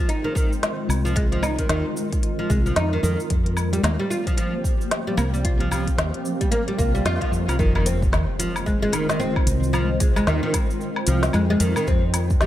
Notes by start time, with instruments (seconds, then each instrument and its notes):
Already playing: ambient pad D#3 G#3 C4 F4 C5
0.09 oud D#4, closed hi-hat, shaker
0.24 oud D#3
0.35 oud D#3, kick, shaker
0.53 shaker
0.63 snare, closed hi-hat, shaker
0.89 fretless electric bass C2, low woodblock, shaker
1.05 oud F3, shaker
1.16 oud G#3, ambient pad A#4, kick, closed hi-hat, shaker
1.32 oud F3, closed hi-hat
1.43 oud D#4, low woodblock, shaker
1.59 oud D#3, kick, closed hi-hat, shaker
1.69 fretless electric bass D#2, oud D#3, snare, closed hi-hat, shaker
1.97 shaker
2.13 kick, closed hi-hat, shaker
2.23 closed hi-hat, shaker
2.39 oud F3
2.50 fretless electric bass C2, oud G#3, kick, shaker
2.66 oud F3, shaker
2.76 fretless electric bass F2, oud D#4, snare, closed hi-hat, shaker
2.93 oud D#3
3.03 fretless electric bass F2, oud D#3, shaker
3.20 shaker
3.30 fretless electric bass F2, ambient pad F3 A#3 C4 G4 C5, kick, closed hi-hat, shaker
3.46 closed hi-hat
3.57 low woodblock, shaker
3.73 oud G3, closed hi-hat, shaker
3.83 fretless electric bass D#2, oud A#3, snare, closed hi-hat, shaker
4.00 oud G3
4.10 oud F4, shaker
4.27 oud F3, kick, closed hi-hat, shaker
4.37 oud F3, closed hi-hat, shaker
4.64 kick, shaker
4.81 shaker
4.91 snare, closed hi-hat, shaker
5.07 oud G3
5.17 fretless electric bass C2, oud A#3, low woodblock, shaker
5.34 oud G3, shaker
5.45 oud F4, ambient pad A#4, kick, closed hi-hat, shaker
5.60 oud F3, closed hi-hat
5.71 oud F3, low woodblock, shaker
5.88 kick, closed hi-hat, shaker
5.98 fretless electric bass D#2, snare, closed hi-hat, shaker
6.14 closed hi-hat
6.25 shaker
6.41 oud G3, kick, closed hi-hat, shaker
6.51 oud A#3, closed hi-hat, swell, shaker
6.68 oud G3, closed hi-hat
6.79 fretless electric bass C2, oud A#3, kick, shaker
6.95 oud G3, shaker
7.05 fretless electric bass F2, oud F4, snare, closed hi-hat, shaker
7.21 oud F3, kick, closed hi-hat
7.32 fretless electric bass F2, shaker
7.48 fretless electric bass C2, oud F3, closed hi-hat, low woodblock, shaker
7.59 fretless electric bass F2, oud D#3, ambient pad D#3 G#3 C4 F4 C5, kick, impact, shaker
7.75 oud D#3, low woodblock
7.86 oud C4, closed hi-hat, shaker
8.02 kick, shaker
8.12 fretless electric bass D#2, snare, low woodblock, shaker
8.39 oud F3, closed hi-hat, shaker
8.56 low woodblock, shaker
8.66 oud G#3, kick, shaker
8.82 oud G#3
8.93 oud D#3, closed hi-hat, low woodblock, shaker
9.09 oud D#3, snare, shaker
9.20 oud C4, shaker
9.36 kick, low woodblock
9.47 fretless electric bass C2, closed hi-hat, shaker
9.63 shaker
9.73 oud F3, low woodblock, shaker
10.00 oud G#3, kick, closed hi-hat, shaker
10.16 oud G#3, low woodblock, shaker
10.27 fretless electric bass D#2, oud D#3, snare, shaker
10.43 oud D#3
10.54 oud C4, kick, closed hi-hat, low woodblock, shaker
10.70 shaker
10.81 shaker
10.96 low woodblock
11.07 fretless electric bass C2, oud F3, closed hi-hat, shaker
11.23 snare, shaker
11.33 fretless electric bass F2, oud G#3, low woodblock, shaker
11.50 oud G#3
11.60 fretless electric bass F2, oud D#3, closed hi-hat, shaker
11.76 oud D#3, low woodblock, shaker
11.87 fretless electric bass F2, ambient pad F3 A#3 G4, oud C4, kick, shaker
12.14 closed hi-hat, low woodblock, shaker
12.30 kick, shaker
12.41 fretless electric bass D#2, oud G3, snare, shaker